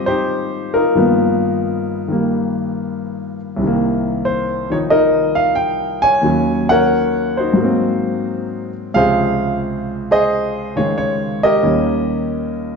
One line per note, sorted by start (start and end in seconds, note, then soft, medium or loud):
0.00 0.95 G#2 soft
0.00 0.94 D#3 soft
0.00 0.95 F3 soft
0.00 0.96 G3 soft
0.00 0.95 A#3 soft
0.00 0.96 C4 soft
0.06 0.74 D#4 medium
0.06 0.92 G4 medium
0.06 0.76 C5 medium
0.74 3.37 D#4 medium
0.74 3.36 F4 medium
0.74 3.36 A#4 medium
0.95 3.60 G2 medium
0.95 2.07 D#3 soft
0.95 3.61 F3 soft
0.95 2.10 A#3 medium
0.95 3.61 B3 medium
2.08 3.60 D#3 soft
2.08 3.61 G3 soft
2.08 3.62 A#3 soft
3.56 6.22 C2 soft
3.56 6.23 C3 soft
3.63 4.69 D#3 soft
3.67 6.27 A#3 medium
4.25 4.68 C5 medium
4.70 6.21 D#3 soft
4.70 6.24 F3 soft
4.70 4.90 D#4 medium
4.70 4.77 C#5 medium
4.90 6.20 D#4 medium
4.90 6.19 A#4 medium
4.90 5.38 D#5 medium
5.35 5.55 F5 medium
5.55 6.04 G5 medium
6.02 6.70 C#5 medium
6.02 6.65 G#5 loud
6.21 7.57 D#2 medium
6.21 7.58 D#3 soft
6.21 7.55 F#3 medium
6.26 7.60 C#4 medium
6.69 7.55 A#4 medium
6.69 7.55 C#5 medium
6.69 7.39 F#5 loud
7.37 8.71 D#4 soft
7.37 8.71 F#4 soft
7.37 8.70 C5 medium
7.53 8.92 G#2 medium
7.53 8.94 F#3 soft
7.61 8.96 A#3 medium
7.61 8.98 C4 medium
8.94 11.64 C#2 medium
8.94 11.65 C3 medium
8.94 10.74 C#3 medium
8.94 11.65 F3 medium
8.94 10.10 G#4 medium
8.94 10.10 C5 medium
8.94 9.58 F5 medium
10.11 11.40 G#4 medium
10.11 11.41 C5 medium
10.11 10.80 D#5 loud
10.76 11.64 C#3 soft
10.76 11.62 D#3 soft
10.76 11.65 G#3 soft
10.76 10.96 C#5 medium
10.98 11.45 C#5 medium
11.43 12.76 G4 medium
11.43 12.76 A#4 medium
11.43 12.76 D#5 medium
11.62 12.76 D#2 medium
11.62 12.76 D#3 soft
11.62 12.76 G3 soft
11.62 12.76 C#4 medium